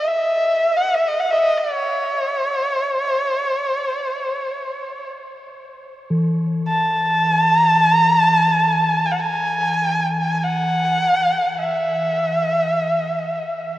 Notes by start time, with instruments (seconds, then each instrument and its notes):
0.08 erhu E5
0.77 erhu F#5
0.94 erhu E5
1.08 erhu D#5
1.20 erhu F#5
1.31 erhu D#5 E5
1.37 erhu E5
1.44 erhu D#5
1.58 erhu C#5
6.10 singing bowl E3
6.69 erhu A5
7.51 erhu A#5
7.73 erhu A5
7.97 erhu A#5
8.19 erhu A5
9.05 erhu G#5
9.11 erhu F#5
9.19 erhu G#5
10.35 erhu G#5
10.43 erhu F#5
11.60 erhu E5